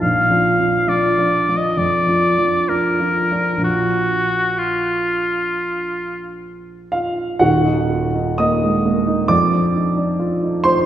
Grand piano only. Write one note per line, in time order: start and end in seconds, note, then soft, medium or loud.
0.02 0.30 A#1 medium
0.30 0.57 F3 medium
0.30 0.57 D4 medium
0.30 0.57 F4 medium
0.59 0.86 F3 soft
0.59 0.86 D4 soft
0.59 0.87 F4 medium
0.87 1.15 F3 medium
0.87 1.16 D4 medium
0.87 1.16 F4 medium
1.18 1.45 F3 medium
1.18 1.46 D4 medium
1.18 1.46 F4 medium
1.48 1.75 F3 medium
1.48 1.76 D4 medium
1.48 1.76 F4 medium
1.77 2.07 F2 medium
2.07 2.35 F3 soft
2.07 2.35 D4 soft
2.07 2.35 F4 soft
2.37 2.66 F3 soft
2.37 2.66 D4 soft
2.37 2.67 F4 soft
2.69 2.97 F3 soft
2.69 2.98 D4 soft
2.69 2.98 F4 soft
3.00 3.29 F3 soft
3.00 3.29 D4 soft
3.00 3.29 F4 soft
3.31 3.57 F3 medium
3.31 3.58 D4 medium
3.31 3.59 F4 medium
3.57 7.33 A#1 medium
3.57 7.34 F3 soft
3.57 7.35 D4 soft
3.57 6.92 F4 soft
6.92 7.38 F4 medium
6.92 7.40 F5 medium
7.39 9.26 D#1 medium
7.39 9.26 D#2 medium
7.39 8.35 F#4 medium
7.39 8.38 F#5 loud
7.64 8.05 D#4 medium
7.90 8.15 F4 medium
8.14 8.53 D#4 medium
8.38 8.77 A#3 medium
8.38 9.27 D#5 medium
8.38 9.30 D#6 loud
8.63 8.86 G#3 medium
8.86 9.21 A#3 medium
9.07 9.30 D#4 medium
9.28 10.86 F2 medium
9.28 10.61 D5 medium
9.28 10.64 D6 loud
9.52 9.88 D4 medium
9.75 9.98 D#4 soft
9.97 10.34 D4 medium
10.19 10.56 F4 medium
10.42 10.65 D#4 soft
10.64 10.86 F4 medium
10.64 10.86 C5 medium
10.64 10.86 C6 loud